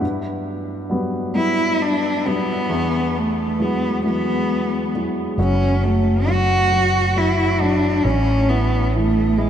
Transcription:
0.01 grand piano G2
0.90 grand piano F#3 G3 B3
1.35 grand piano F#3 G3 B3, cello E4
1.81 cello D4
2.26 grand piano F#3 G3 B3, cello B3
2.69 grand piano E2
3.18 cello A3
3.59 grand piano E3 F#3 G#3, cello B3
4.04 grand piano E3 F#3 G#3, cello B3
4.95 grand piano E3 F#3 G#3
5.38 fretless electric bass F#1, grand piano F#3, cello C#4
5.84 grand piano F#3, cello A3
6.28 grand piano F#3, cello F#4
6.72 grand piano F#3
7.16 grand piano F#3, cello E4
7.61 grand piano F#3, cello D4
8.04 fretless electric bass A1, cello C#4, grand piano C#4
8.49 cello B3, grand piano E4
8.93 grand piano E3, cello A3
9.38 cello G#3, grand piano E4

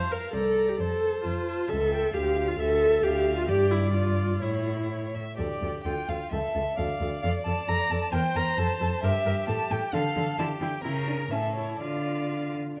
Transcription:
Already playing: cello F2, viola C5, violin F5 A5
0.11 viola A#4, violin A5
0.33 cello C2, viola A4, violin D5 A#5
0.57 violin A#5
0.68 viola G4
0.79 cello F2, viola A4, violin C5 A5
1.02 violin A5
1.24 cello F2, viola F4
1.46 violin A5
1.69 cello C#2, viola A4, violin E5 A5
1.91 violin G5
2.13 cello D2, viola G4, violin F5
2.48 viola F4
2.58 cello D2, viola A4, violin E5
3.03 cello D2, viola G4, violin E5 F5
3.37 viola F4
3.48 cello G2, viola G4, violin D5
3.71 viola E4
3.93 viola F4
4.42 cello A2, viola E4, violin C#5
4.91 violin C#5
5.15 violin E5
5.37 cello D2, violin G4 D5, viola A4
5.62 cello D2, viola A4
5.83 cello D2, violin F4 G5, viola A4
6.08 cello D2, viola A4, violin F5
6.31 cello C#2, viola A4, violin A4 E5
6.55 cello C#2, viola A4
6.77 cello D2, viola A4, violin D5 F5
7.01 cello D2, viola A4
7.22 cello F2, viola A4, violin F5
7.45 cello F2, viola A4, violin A5
7.68 cello F2, viola A4, violin A#5
7.90 cello F2, viola A4, violin A5
8.12 cello E2, viola A#4, violin C5 G5
8.35 cello E2, viola A#4, violin A#5
8.58 cello F2, viola A4, violin A5
8.81 cello F2, viola A4
9.03 cello G2, violin G4 E5, viola A#4
9.26 cello G2, viola A#4
9.48 cello A2, viola A4, violin A5
9.71 cello A2, viola A4, violin G5
9.93 cello D3, violin A4 F5, viola A4
10.16 cello D3, viola A4
10.38 cello D3, viola E4, violin G4 A5
10.61 cello D3, viola E4, violin G5
10.84 cello C#3, viola E4, violin A#4
11.07 viola D4
11.31 cello A2, viola C#4, violin A4 E5
11.55 viola E4, violin C#5
11.79 cello D3, viola F4, violin D5 F5

